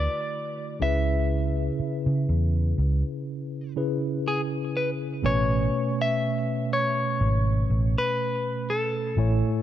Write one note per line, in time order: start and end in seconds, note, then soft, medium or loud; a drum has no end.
0.00 0.77 D3 medium
0.00 0.77 A3 medium
0.00 0.77 E4 medium
0.00 0.78 F#4 medium
0.00 0.78 B4 medium
0.00 0.78 D5 loud
0.80 1.68 C#2 loud
0.80 3.72 C#3 medium
0.80 3.72 C#4 medium
0.80 3.72 E4 medium
0.80 3.73 G#4 medium
0.80 3.73 B4 medium
0.80 3.73 E5 loud
1.80 muted fingered electric bass stroke soft
2.06 2.26 C#3 medium
2.29 2.72 E2 medium
2.78 3.01 C#2 medium
3.76 5.24 C#3 medium
3.76 5.23 C#4 medium
3.76 5.24 E4 medium
3.76 5.24 G#4 medium
3.76 5.24 B4 medium
4.28 4.41 G#4 loud
4.77 4.90 B4 medium
5.23 5.67 A1 loud
5.23 9.13 B2 medium
5.23 9.13 A3 medium
5.23 9.13 C#4 medium
5.23 9.14 B4 medium
5.23 6.01 C#5 loud
5.23 9.14 G#5 medium
6.02 6.73 E5 loud
6.73 7.98 C#5 loud
7.21 7.64 G#1 loud
7.70 7.93 A1 loud
7.98 8.71 B4 loud
8.70 9.62 A4 medium
9.16 9.41 A1 loud
9.16 9.62 A2 medium
9.16 9.62 A3 medium
9.16 9.62 E4 medium
9.16 9.62 C#5 medium
9.16 9.62 G#5 medium